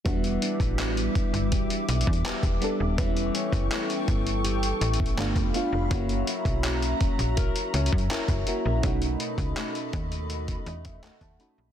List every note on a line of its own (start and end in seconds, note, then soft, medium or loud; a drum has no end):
0.05 0.38 E1 loud
0.05 2.98 E3 medium
0.05 0.93 G3 medium
0.05 2.95 G3 medium
0.05 0.94 B3 medium
0.05 0.94 D4 medium
0.05 0.95 F#4 medium
0.05 2.95 E5 medium
0.05 2.96 D6 medium
0.05 kick loud
0.05 closed hi-hat medium
0.24 closed hi-hat soft
0.42 2.24 D4 medium
0.42 closed hi-hat medium
0.60 1.09 A1 medium
0.60 kick medium
0.60 closed hi-hat soft
0.79 1.87 B3 medium
0.79 clap medium
0.79 closed hi-hat medium
0.97 closed hi-hat soft
1.15 1.23 G1 soft
1.15 kick medium
1.15 closed hi-hat soft
1.33 1.66 G1 medium
1.33 closed hi-hat soft
1.52 2.26 G4 medium
1.52 kick medium
1.52 closed hi-hat medium
1.70 closed hi-hat medium
1.88 2.05 B1 loud
1.88 2.24 B3 medium
1.88 closed hi-hat medium
2.01 closed hi-hat medium
2.07 2.23 E2 loud
2.07 kick loud
2.13 closed hi-hat soft
2.25 2.32 E1 soft
2.25 3.06 B3 medium
2.25 2.60 D4 medium
2.25 3.38 G4 medium
2.25 clap loud
2.25 closed hi-hat medium
2.43 2.59 E1 medium
2.43 kick medium
2.43 closed hi-hat medium
2.61 2.83 G3 medium
2.61 2.84 B3 medium
2.61 3.06 D4 medium
2.61 2.84 D4 medium
2.61 2.85 A4 medium
2.61 closed hi-hat medium
2.80 2.96 D#1 medium
2.97 3.31 E1 loud
2.97 5.17 E3 medium
2.97 3.86 G3 medium
2.97 3.86 B3 medium
2.97 3.87 C#4 medium
2.97 3.87 E4 medium
2.97 5.88 A4 medium
2.97 5.16 G5 medium
2.97 5.16 C#6 medium
2.97 kick loud
2.97 closed hi-hat medium
3.17 closed hi-hat soft
3.35 5.25 C#4 medium
3.35 closed hi-hat medium
3.52 3.69 F#1 medium
3.52 kick medium
3.52 closed hi-hat soft
3.71 4.80 A3 medium
3.71 clap loud
3.71 closed hi-hat medium
3.90 closed hi-hat soft
4.08 4.73 G1 medium
4.08 kick medium
4.08 closed hi-hat soft
4.27 closed hi-hat medium
4.44 5.25 G4 medium
4.44 closed hi-hat medium
4.63 closed hi-hat medium
4.81 5.14 A1 medium
4.81 5.25 A3 medium
4.81 closed hi-hat medium
4.94 closed hi-hat medium
5.00 kick medium
5.06 closed hi-hat soft
5.17 5.34 G1 loud
5.17 5.90 G3 medium
5.17 5.47 A3 medium
5.17 5.47 B3 medium
5.17 5.48 D4 medium
5.17 5.48 F4 loud
5.17 5.90 F5 medium
5.17 5.90 B5 medium
5.17 clap loud
5.17 closed hi-hat medium
5.36 5.52 F1 medium
5.36 kick medium
5.36 closed hi-hat medium
5.53 5.76 A3 medium
5.53 5.76 B3 medium
5.53 5.77 D4 medium
5.53 5.98 F4 medium
5.53 5.77 F4 medium
5.53 closed hi-hat medium
5.72 5.89 F1 medium
5.90 6.23 F#1 loud
5.90 9.41 F#3 medium
5.90 6.79 A#3 medium
5.90 6.79 C#4 medium
5.90 6.80 E4 medium
5.90 8.81 F#4 medium
5.90 6.80 F#4 medium
5.90 8.81 E5 medium
5.90 8.81 A#5 medium
5.90 kick loud
5.90 closed hi-hat medium
6.09 closed hi-hat soft
6.27 8.09 E4 medium
6.27 closed hi-hat medium
6.45 6.94 B1 medium
6.45 kick medium
6.45 closed hi-hat soft
6.64 7.72 C#4 medium
6.64 clap medium
6.64 closed hi-hat medium
6.82 closed hi-hat soft
7.01 7.08 A#1 soft
7.01 kick medium
7.01 closed hi-hat soft
7.19 7.51 A#1 medium
7.19 closed hi-hat soft
7.37 8.10 A#4 medium
7.37 kick medium
7.37 closed hi-hat medium
7.56 closed hi-hat medium
7.73 7.90 C#2 medium
7.73 8.09 C#4 medium
7.73 closed hi-hat medium
7.86 closed hi-hat medium
7.93 8.09 F#2 loud
7.93 kick loud
7.98 closed hi-hat soft
8.10 8.18 F#1 soft
8.10 8.91 C#4 medium
8.10 8.46 E4 medium
8.10 8.91 A#4 medium
8.10 clap loud
8.10 closed hi-hat medium
8.28 8.45 F#1 loud
8.28 kick medium
8.28 closed hi-hat medium
8.47 8.65 A#3 medium
8.47 8.91 E4 medium
8.47 8.65 F#4 medium
8.47 closed hi-hat medium
8.65 8.82 A#1 medium
8.65 8.83 C#4 medium
8.65 9.00 A#4 medium
8.83 9.16 B1 loud
8.83 11.72 B2 medium
8.83 9.71 A3 medium
8.83 9.72 C#4 medium
8.83 9.72 D#4 medium
8.83 9.73 F#4 medium
8.83 11.72 A4 medium
8.83 11.72 D#5 medium
8.83 11.72 B5 medium
8.83 kick loud
8.83 closed hi-hat medium
9.02 closed hi-hat soft
9.20 11.04 D#4 medium
9.20 closed hi-hat medium
9.38 9.54 C#2 medium
9.38 kick medium
9.38 closed hi-hat soft
9.57 10.66 A3 medium
9.57 clap medium
9.57 closed hi-hat medium
9.75 closed hi-hat medium
9.93 10.58 D#2 medium
9.93 kick medium
9.93 closed hi-hat soft
10.12 closed hi-hat medium
10.30 11.04 F#4 medium
10.30 closed hi-hat medium
10.48 kick medium
10.48 closed hi-hat medium
10.66 10.99 E2 medium
10.66 11.03 A3 medium
10.66 10.84 D#5 medium
10.66 closed hi-hat soft
10.85 11.02 E5 medium
10.85 kick medium
10.85 closed hi-hat medium
11.03 11.10 D#2 soft
11.03 11.72 A3 medium
11.03 11.39 D#4 medium
11.03 11.72 F#4 medium
11.03 11.21 F#5 medium
11.03 clap loud
11.03 closed hi-hat medium
11.21 11.37 D#2 medium
11.21 11.39 A5 medium
11.21 kick medium
11.21 closed hi-hat medium
11.39 11.61 A3 medium
11.39 11.62 C#4 medium
11.39 11.72 D#4 medium
11.39 11.62 D#4 medium
11.39 11.63 F#4 medium
11.39 11.72 B5 medium
11.39 closed hi-hat medium
11.58 11.72 A#1 loud